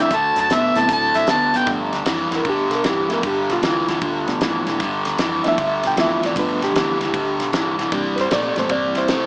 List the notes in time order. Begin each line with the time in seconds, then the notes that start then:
0.00 A3 C4 D4 E5
0.11 D2 D3 A3, kick, snare, closed hi-hat
0.16 A5
0.36 F#2, snare, closed hi-hat
0.40 A5
0.49 A2 D3 B3, snare, closed hi-hat
0.54 E5
0.75 A2 D3 F#3 A3 B3 C4 E4 A5, snare, closed hi-hat
0.88 A2 D3 A3, kick, snare, closed hi-hat
0.93 A5
1.14 F#2 E5, snare, closed hi-hat
1.27 D2 D3 B3 A5, snare, closed hi-hat
1.53 F#1 D3 B3 G5, snare, closed hi-hat
1.66 G1 G2 D3 F3 A3 B3 D4, kick, snare, ride
1.92 D2, snare, ride
2.05 F2 G2 E3, snare, ride
2.31 E2 G2 E3, snare, ride
2.36 A#4
2.45 D2 G2 D3, kick, ride
2.49 G4
2.70 B1, snare, ride
2.75 A#4
2.83 G1 G2 E3, snare, ride
2.89 G4
3.08 G2 E3 F3 A3 B3 E4, snare, ride
3.14 A#4
3.23 G1 G2 D3 G4, kick, ride
3.49 B1 F4, snare, ride
3.62 D2 G2 E3, snare, ride
3.88 D2 G2 E3, snare, ride
4.02 D2 G2 D3, kick, ride
4.27 B1 F3 A3 B3 D4, snare, ride
4.41 G1 G2 E3, snare, ride
4.67 B1 G2 E3, snare, ride
4.80 G1 G2 D3, kick, snare, ride
5.05 D2, snare, ride
5.18 F2 G2 E3, snare, ride
5.44 E2 G2 E3 F3 A3 B3 D4, snare, ride
5.48 E5
5.58 D2 G2 D3, kick, ride
5.83 B1 G5, snare, ride
5.96 G1 G2 E3 F3 A3 B3 F4, snare, ride
6.01 E5
6.22 G2 E3 D5, snare, ride
6.36 G1 G2 D3 F3 A3 B3 D4 B4, kick, snare, ride
6.61 B1 G4, snare, ride
6.74 D2 G2 E3, snare, ride
6.99 D2 G2 E3, snare, ride
7.13 D2 G2 D3, kick, ride
7.38 B1, snare, ride
7.52 G1 G2 E3, snare, ride
7.78 B1 G2 E3, snare, ride
7.92 C2 C3 E3 G3 A#3 D4, kick, snare, ride
8.16 G2 B4, snare, ride
8.21 C5
8.31 A#2 C3 A3 D5, snare, ride
8.56 A2 C3 E3 G3 A3 A#3 C4 C5, snare, ride
8.69 G2 C3 G3 D5, kick, ride
8.95 E2 E4 C5, snare, ride
9.08 C2 C3 A3, snare, ride